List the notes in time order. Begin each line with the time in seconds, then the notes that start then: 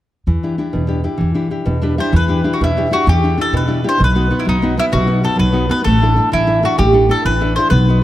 0.27 E2 E3
0.43 D4 E4 G4
0.58 D4 E4 G4
0.73 E2 B2
0.87 D4 E4 G4
1.04 D4 E4 G4
1.18 E2 E3
1.34 D4 E4 G4
1.50 D4 E4 G4
1.66 E2 B2
1.82 D4 E4 G4 B4
1.98 D4 E4 G4 C5 E5
2.12 E2 E3 B4
2.28 D4 E4 G4
2.44 D4 E4 G4
2.53 F#4
2.61 E2 B2 E4
2.77 D4 E4 G4
2.91 D4 E4 F#4 G4
3.06 E2 E3 G4
3.23 D4 E4 G4
3.37 D4 E4 G4 A4
3.52 E2 B2
3.57 B4
3.67 D4 E4 G4
3.84 D4 E4 G4
3.89 C5
3.98 B1 B2
4.04 B4
4.15 B3 D#4 F#4
4.31 B3 D#4 F#4
4.40 E4
4.45 B1 F#3 D#4
4.62 B3 D#4 F#4
4.77 B3 D#4 E4 F#4
4.92 B1 B2 F#4
5.07 B3 D#4 F#4
5.23 B3 D#4 F#4 A4
5.36 B1 F#3 B4
5.52 B3 D#4 F#4
5.69 B3 D#4 F#4 B4
5.84 A1 A3 A4
6.02 D4 E4 A4
6.16 D4 E4 A4
6.32 A1 E3 E4
6.47 D4 E4 A4
6.62 D4 E4 F#4 A4
6.78 A1 A3 G4
6.93 D4 E4 A4
7.09 D4 E4 A4
7.25 A1 E3 B4
7.41 D4 E4 A4
7.56 D4 E4 A4 C5
7.70 B1 B3 B4
7.89 F#4 B4 D#5